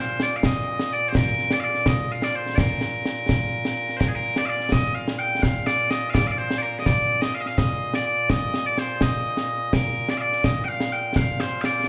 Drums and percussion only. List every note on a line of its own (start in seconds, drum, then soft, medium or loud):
0.20 snare medium
0.43 concert bass drum medium
0.43 snare loud
0.79 snare medium
1.15 concert bass drum medium
1.15 snare loud
1.39 snare soft
1.51 snare medium
1.75 snare soft
1.86 concert bass drum medium
1.86 snare loud
2.22 snare medium
2.46 snare soft
2.58 concert bass drum medium
2.58 snare loud
2.81 snare medium
3.05 snare medium
3.29 concert bass drum medium
3.29 snare medium
3.65 snare medium
3.89 snare soft
4.01 concert bass drum medium
4.01 snare medium
4.36 snare medium
4.60 snare soft
4.72 concert bass drum medium
4.72 snare loud
5.08 snare medium
5.43 concert bass drum medium
5.43 snare medium
5.67 snare medium
5.91 snare medium
6.15 concert bass drum medium
6.15 snare medium
6.51 snare medium
6.86 concert bass drum medium
6.86 snare loud
7.22 snare medium
7.46 snare soft
7.58 concert bass drum medium
7.58 snare medium
7.94 snare medium
8.30 concert bass drum medium
8.30 snare medium
8.54 snare medium
8.78 snare medium
9.01 concert bass drum medium
9.01 snare medium
9.37 snare medium
9.73 concert bass drum medium
9.73 snare medium
10.09 snare medium
10.33 snare soft
10.44 concert bass drum medium
10.44 snare medium
10.80 snare medium
11.16 concert bass drum medium
11.16 snare loud
11.40 snare medium
11.64 snare medium